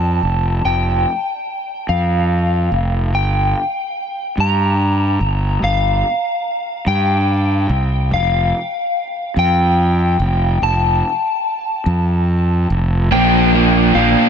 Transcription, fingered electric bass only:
0, 0, Header, 1, 2, 480
1, 0, Start_track
1, 0, Tempo, 831025
1, 374, Time_signature, 6, 3, 24, 8
1, 8255, End_track
2, 0, Start_track
2, 0, Title_t, "Fingered electric bass"
2, 0, Program_c, 0, 33
2, 0, Note_on_c, 0, 41, 83
2, 110, Note_off_c, 0, 41, 0
2, 132, Note_on_c, 0, 29, 80
2, 361, Note_off_c, 0, 29, 0
2, 373, Note_on_c, 0, 29, 72
2, 601, Note_off_c, 0, 29, 0
2, 1090, Note_on_c, 0, 41, 83
2, 1548, Note_off_c, 0, 41, 0
2, 1570, Note_on_c, 0, 29, 81
2, 1808, Note_off_c, 0, 29, 0
2, 1808, Note_on_c, 0, 31, 84
2, 2037, Note_off_c, 0, 31, 0
2, 2528, Note_on_c, 0, 43, 89
2, 2986, Note_off_c, 0, 43, 0
2, 3007, Note_on_c, 0, 31, 82
2, 3237, Note_off_c, 0, 31, 0
2, 3247, Note_on_c, 0, 31, 77
2, 3477, Note_off_c, 0, 31, 0
2, 3965, Note_on_c, 0, 43, 97
2, 4426, Note_off_c, 0, 43, 0
2, 4443, Note_on_c, 0, 36, 88
2, 4687, Note_on_c, 0, 29, 83
2, 4695, Note_off_c, 0, 36, 0
2, 4917, Note_off_c, 0, 29, 0
2, 5409, Note_on_c, 0, 41, 96
2, 5868, Note_off_c, 0, 41, 0
2, 5889, Note_on_c, 0, 29, 95
2, 6119, Note_off_c, 0, 29, 0
2, 6133, Note_on_c, 0, 29, 76
2, 6361, Note_off_c, 0, 29, 0
2, 6851, Note_on_c, 0, 41, 97
2, 7310, Note_off_c, 0, 41, 0
2, 7336, Note_on_c, 0, 29, 105
2, 7563, Note_off_c, 0, 29, 0
2, 7575, Note_on_c, 0, 34, 100
2, 8032, Note_off_c, 0, 34, 0
2, 8057, Note_on_c, 0, 34, 85
2, 8170, Note_off_c, 0, 34, 0
2, 8255, End_track
0, 0, End_of_file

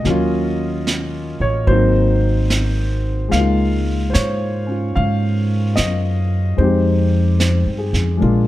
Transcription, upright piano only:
0, 0, Header, 1, 2, 480
1, 0, Start_track
1, 0, Tempo, 814111
1, 34, Time_signature, 4, 2, 24, 8
1, 4996, End_track
2, 0, Start_track
2, 0, Title_t, "Upright piano"
2, 0, Program_c, 0, 0
2, 0, Control_c, 0, 64, 127
2, 0, Note_on_c, 0, 75, 68
2, 20, Note_on_c, 0, 54, 49
2, 33, Note_on_c, 0, 58, 46
2, 41, Note_on_c, 0, 61, 50
2, 42, Control_c, 0, 64, 0
2, 54, Note_on_c, 0, 65, 57
2, 159, Control_c, 0, 64, 127
2, 500, Note_off_c, 0, 75, 0
2, 834, Note_on_c, 0, 73, 74
2, 974, Note_off_c, 0, 54, 0
2, 983, Note_on_c, 0, 54, 50
2, 985, Note_off_c, 0, 58, 0
2, 986, Note_on_c, 0, 72, 75
2, 993, Note_on_c, 0, 58, 43
2, 999, Note_off_c, 0, 61, 0
2, 1000, Note_off_c, 0, 73, 0
2, 1002, Control_c, 0, 64, 0
2, 1003, Note_on_c, 0, 60, 43
2, 1006, Note_off_c, 0, 65, 0
2, 1012, Note_on_c, 0, 63, 54
2, 1117, Control_c, 0, 64, 127
2, 1773, Note_off_c, 0, 72, 0
2, 1937, Note_on_c, 0, 56, 40
2, 1947, Note_off_c, 0, 58, 0
2, 1954, Note_on_c, 0, 77, 82
2, 1955, Note_on_c, 0, 58, 35
2, 1957, Note_off_c, 0, 54, 0
2, 1967, Note_off_c, 0, 60, 0
2, 1971, Note_off_c, 0, 63, 0
2, 1971, Control_c, 0, 64, 0
2, 1980, Note_on_c, 0, 63, 34
2, 1999, Note_on_c, 0, 65, 42
2, 2078, Control_c, 0, 64, 127
2, 2417, Note_on_c, 0, 72, 53
2, 2427, Note_off_c, 0, 77, 0
2, 2438, Note_on_c, 0, 73, 72
2, 2445, Note_off_c, 0, 72, 0
2, 2753, Note_on_c, 0, 61, 37
2, 2765, Note_off_c, 0, 65, 0
2, 2773, Note_on_c, 0, 65, 37
2, 2899, Note_off_c, 0, 73, 0
2, 2921, Note_on_c, 0, 77, 81
2, 3380, Note_off_c, 0, 77, 0
2, 3394, Note_on_c, 0, 75, 69
2, 3862, Note_off_c, 0, 56, 0
2, 3871, Note_on_c, 0, 56, 40
2, 3877, Note_off_c, 0, 61, 0
2, 3879, Note_on_c, 0, 72, 60
2, 3880, Note_off_c, 0, 58, 0
2, 3881, Note_on_c, 0, 60, 40
2, 3882, Note_off_c, 0, 63, 0
2, 3887, Note_off_c, 0, 65, 0
2, 3891, Control_c, 0, 64, 0
2, 3891, Note_on_c, 0, 63, 35
2, 3892, Note_off_c, 0, 75, 0
2, 3903, Note_on_c, 0, 67, 45
2, 3984, Control_c, 0, 64, 127
2, 4352, Note_off_c, 0, 72, 0
2, 4361, Note_on_c, 0, 72, 43
2, 4589, Note_on_c, 0, 68, 41
2, 4734, Note_off_c, 0, 72, 0
2, 4809, Note_off_c, 0, 56, 0
2, 4818, Note_on_c, 0, 56, 43
2, 4828, Note_on_c, 0, 58, 37
2, 4834, Note_off_c, 0, 60, 0
2, 4840, Note_off_c, 0, 63, 0
2, 4840, Note_on_c, 0, 62, 38
2, 4844, Control_c, 0, 64, 0
2, 4846, Note_off_c, 0, 67, 0
2, 4848, Note_on_c, 0, 65, 47
2, 4927, Note_off_c, 0, 68, 0
2, 4955, Control_c, 0, 64, 127
2, 4996, Note_off_c, 0, 56, 0
2, 4996, Note_off_c, 0, 58, 0
2, 4996, Note_off_c, 0, 62, 0
2, 4996, Note_off_c, 0, 65, 0
2, 4996, End_track
0, 0, End_of_file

